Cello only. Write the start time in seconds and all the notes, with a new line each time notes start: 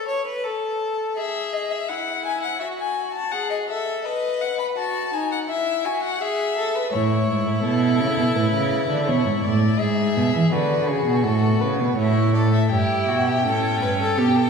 6.92 A2
7.28 G#2
7.46 A2
7.64 B2
7.99 C#3
8.18 B2
8.35 A2
8.53 C#3
8.89 D3
9.08 B2
9.26 G#2
9.44 A2
9.80 G#2
10.16 B2
10.34 E3
10.52 D3
10.88 C#3
11.06 B2
11.24 A2
11.61 C#3
11.79 B2
11.97 A2
12.71 G2
13.08 B2
13.44 A2
13.81 G2
14.18 B2